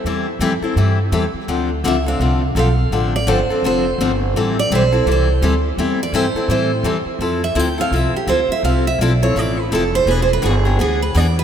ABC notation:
X:1
M:4/4
L:1/16
Q:"Swing" 1/4=168
K:Am
V:1 name="Steel-string acoustic guitar"
z16 | z4 e2 f6 f4 | z2 d2 c4 c6 z2 | z2 d2 c4 c6 z2 |
z2 d2 c4 c6 z2 | z2 e2 g2 f2 e2 G2 c2 e2 | f2 e2 d2 ^c2 d2 B2 A2 =c2 | (3B2 c2 B2 ^G2 =G2 ^G2 B2 d2 B2 |]
V:2 name="Steel-string acoustic guitar"
[E,G,CEA]2 z2 [E,G,CEA] z [CEA]2 [E,G,CEA]2 z2 [E,G,CEA] z3 | [D,F,CDA]2 z2 [D,F,CDA] z [CDA]2 [D,F,CDA]2 z2 [D,F,CDA] z3 | [D,F,CDA]2 z2 [D,F,CDA] z [CDA]2 [D,F,CDA]2 z2 [D,F,CDA] z3 | [E,G,CEA]2 z2 [E,G,CEA] z [CEA]2 [E,G,CEA]2 z2 [E,G,CEA] z3 |
[E,G,CEA]2 z2 [E,G,CEA] z [CEA]2 [E,G,CEA]2 z2 [E,G,CEA] z3 | [F,CEA]2 z2 [F,CEA] z [CEA]2 [F,CEA]2 z2 [F,CEA] z3 | [F,CEA]2 z2 [F,CEA] z [CEA]2 [F,CEA]2 z2 [F,CEA] z3 | [E,B,D^G]2 z2 [E,B,DG] z [B,DG]2 [E,B,DG]2 z2 [E,B,DG] z3 |]
V:3 name="Upright bass" clef=bass
E,,4 F,,2 z2 G,,4 E,,2 z2 | D,,4 ^C,,4 =C,,4 B,,,4 | A,,,4 G,,,2 z2 F,,,4 G,,,4 | A,,,4 B,,,4 C,,4 D,,4 |
E,,4 G,,2 z2 A,,4 E,,2 z2 | F,,4 D,,4 C,,2 z2 D,,2 z2 | C,,4 B,,,4 A,,,4 F,,,4 | E,,,4 G,,,4 D,,4 E,,4 |]